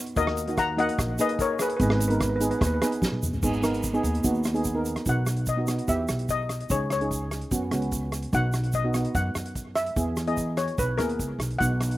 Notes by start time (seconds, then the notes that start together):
0.06 closed hi-hat
0.16 D#2 A#3 D#4 F#4 A#4 D#5, kick, closed hi-hat, shaker
0.27 cross-stick
0.37 closed hi-hat, shaker
0.48 A#3 D#4 F#4, closed hi-hat, shaker
0.57 F#5 A#5, kick, cross-stick, closed hi-hat, shaker
0.77 A#3 D#4 F#4 D#5 F#5, closed hi-hat
0.89 closed hi-hat
0.99 A#1, kick, cross-stick, closed hi-hat, shaker
1.19 A#3 D#4 G#4 B4 D#5, closed hi-hat, shaker
1.29 closed hi-hat
1.39 A#4 C#5, kick, closed hi-hat, shaker
1.59 G#4 B4, cross-stick, closed hi-hat, shaker
1.69 B4, closed hi-hat
1.76 G#1 B3 D#4 G#4 B4, kick, closed hi-hat
1.81 B4, shaker
1.90 B4, cross-stick
2.00 B4, closed hi-hat, shaker
2.08 B3 D#4 A#4 B4, closed hi-hat, shaker
2.15 B4
2.20 B4, kick, cross-stick, closed hi-hat, shaker
2.29 B4
2.36 B4
2.40 B3 D#4 G#4 B4, closed hi-hat, shaker
2.51 B4, closed hi-hat, shaker
2.59 D#2 B4, kick, cross-stick, closed hi-hat
2.63 B4, shaker
2.74 B4
2.81 B3 D#4 G#4 B4, cross-stick, closed hi-hat, shaker
2.87 B4
2.92 closed hi-hat, shaker
3.02 kick, snare, shaker
3.12 high tom
3.23 mid tom, shaker
3.33 floor tom, shaker
3.43 G#1 B3 D#4 G#4, kick, crash, shaker
3.53 shaker
3.62 B3 D#4 A#4, cross-stick, closed hi-hat, shaker
3.74 closed hi-hat, shaker
3.83 kick, closed hi-hat, shaker
3.94 B3 D#4 G#4, shaker
4.03 D#2, closed hi-hat, shaker
4.14 closed hi-hat, shaker
4.24 D#2 B3 D#4 F#4, kick, closed hi-hat, shaker
4.34 shaker
4.44 cross-stick, closed hi-hat, shaker
4.54 B3 D#4 G#4, closed hi-hat, shaker
4.64 kick, closed hi-hat, shaker
4.74 B3 D#4 A#4
4.85 closed hi-hat, shaker
4.96 cross-stick, closed hi-hat, shaker
5.06 B1 B3 D#4 F#4 F#5, kick, closed hi-hat, shaker
5.27 cross-stick, closed hi-hat, shaker
5.37 closed hi-hat
5.46 D#5, kick, closed hi-hat, shaker
5.57 B3 D#4 F#4
5.67 B3 D#4 F#4, cross-stick, closed hi-hat, shaker
5.79 closed hi-hat
5.87 E2 B3 E4 G4 E5, kick, closed hi-hat, shaker
6.08 B1, cross-stick, closed hi-hat, shaker
6.19 closed hi-hat
6.29 D#5, kick, closed hi-hat, shaker
6.49 cross-stick, closed hi-hat, shaker
6.60 closed hi-hat
6.70 C#2 C#4 D#4 G#4 C#5, kick, closed hi-hat, shaker
6.90 C#5, cross-stick, closed hi-hat, shaker
7.01 C#4 D#4 G#4, closed hi-hat
7.11 kick, closed hi-hat, shaker
7.31 cross-stick, closed hi-hat, shaker
7.41 closed hi-hat
7.51 F#2 B3 C#4 F#4, kick, closed hi-hat, shaker
7.71 C#2 B3 C#4 F#4, cross-stick, closed hi-hat, shaker
7.82 closed hi-hat
7.92 kick, closed hi-hat, shaker
8.12 cross-stick, closed hi-hat, shaker
8.22 closed hi-hat
8.33 B1 B3 D#4 F#4 F#5, kick, closed hi-hat, shaker
8.53 cross-stick, closed hi-hat, shaker
8.64 closed hi-hat
8.73 D#5, kick, closed hi-hat, shaker
8.84 B3 D#4 F#4
8.94 B3 D#4 F#4, cross-stick, closed hi-hat, shaker
9.05 closed hi-hat
9.15 F#2 F#5, kick, closed hi-hat, shaker
9.35 F#2, cross-stick, closed hi-hat, shaker
9.46 closed hi-hat
9.55 kick, closed hi-hat, shaker
9.75 E5, cross-stick, closed hi-hat, shaker
9.86 closed hi-hat
9.96 E2 B3 E4 G#4, kick, closed hi-hat, shaker
10.17 cross-stick, closed hi-hat, shaker
10.27 B3 E4 G#4 D#5, closed hi-hat
10.37 kick, closed hi-hat, shaker
10.57 C#5, cross-stick, closed hi-hat, shaker
10.68 closed hi-hat
10.78 B1 B4, kick, closed hi-hat, shaker
10.98 D#2 B3 E4 G#4 A#4, cross-stick, closed hi-hat, shaker
11.09 closed hi-hat
11.19 C#2, kick, closed hi-hat, shaker
11.39 B1, cross-stick, closed hi-hat, shaker
11.51 closed hi-hat
11.59 B1 B3 D#4 F#4 F#5, kick, closed hi-hat, shaker
11.81 cross-stick, closed hi-hat, shaker
11.91 closed hi-hat